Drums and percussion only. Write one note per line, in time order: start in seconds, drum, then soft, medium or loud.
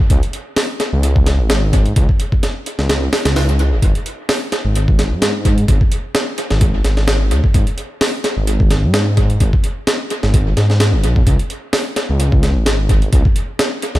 0.10 kick loud
0.10 closed hi-hat medium
0.23 closed hi-hat soft
0.33 closed hi-hat medium
0.56 snare loud
0.56 open hi-hat medium
0.80 snare medium
0.80 closed hi-hat medium
1.03 closed hi-hat medium
1.16 kick loud
1.26 snare medium
1.26 closed hi-hat medium
1.50 snare loud
1.50 closed hi-hat medium
1.73 kick loud
1.73 closed hi-hat medium
1.86 closed hi-hat soft
1.96 kick loud
1.96 closed hi-hat medium
2.09 kick loud
2.20 closed hi-hat medium
2.32 kick medium
2.43 snare medium
2.43 closed hi-hat medium
2.66 closed hi-hat medium
2.79 snare medium
2.90 snare loud
2.90 closed hi-hat medium
3.13 snare loud
3.13 open hi-hat medium
3.25 snare loud
3.25 closed hi-hat medium
3.36 snare loud
3.36 open hi-hat medium
3.49 closed hi-hat medium
3.59 closed hi-hat medium
3.82 kick loud
3.82 closed hi-hat medium
3.95 closed hi-hat soft
4.06 closed hi-hat medium
4.29 snare loud
4.29 open hi-hat medium
4.52 snare medium
4.52 closed hi-hat medium
4.75 closed hi-hat medium
4.88 kick loud
4.99 snare medium
4.99 closed hi-hat medium
5.22 snare loud
5.22 closed hi-hat medium
5.45 kick loud
5.45 closed hi-hat medium
5.58 closed hi-hat soft
5.68 kick loud
5.68 closed hi-hat medium
5.81 kick loud
5.92 closed hi-hat medium
6.15 snare loud
6.15 closed hi-hat medium
6.38 closed hi-hat medium
6.51 snare medium
6.61 kick loud
6.61 closed hi-hat medium
6.84 snare medium
6.84 closed hi-hat medium
6.97 snare soft
7.08 snare loud
7.08 closed hi-hat medium
7.31 closed hi-hat medium
7.44 kick loud
7.54 kick loud
7.54 closed hi-hat medium
7.67 closed hi-hat soft
7.78 closed hi-hat medium
8.01 snare loud
8.01 open hi-hat medium
8.24 snare medium
8.24 closed hi-hat medium
8.47 closed hi-hat medium
8.60 kick loud
8.71 snare medium
8.71 closed hi-hat medium
8.94 snare loud
8.94 closed hi-hat medium
9.17 kick medium
9.17 closed hi-hat medium
9.30 closed hi-hat soft
9.40 kick loud
9.40 closed hi-hat medium
9.53 kick medium
9.64 closed hi-hat medium
9.87 snare loud
9.87 closed hi-hat medium
10.10 closed hi-hat medium
10.23 snare medium
10.34 kick loud
10.34 closed hi-hat medium
10.57 snare soft
10.57 closed hi-hat medium
10.70 snare soft
10.80 snare loud
10.80 closed hi-hat medium
11.04 closed hi-hat medium
11.16 kick loud
11.27 kick loud
11.27 closed hi-hat medium
11.39 closed hi-hat soft
11.50 closed hi-hat medium
11.73 snare loud
11.73 open hi-hat medium
11.96 snare medium
11.96 closed hi-hat medium
12.20 closed hi-hat medium
12.32 kick loud
12.43 snare medium
12.43 closed hi-hat medium
12.66 snare loud
12.66 closed hi-hat medium
12.89 kick loud
12.89 closed hi-hat medium
13.02 closed hi-hat soft
13.13 kick loud
13.13 closed hi-hat medium
13.25 kick loud
13.36 closed hi-hat medium
13.59 snare loud
13.59 closed hi-hat medium
13.82 closed hi-hat medium
13.95 snare medium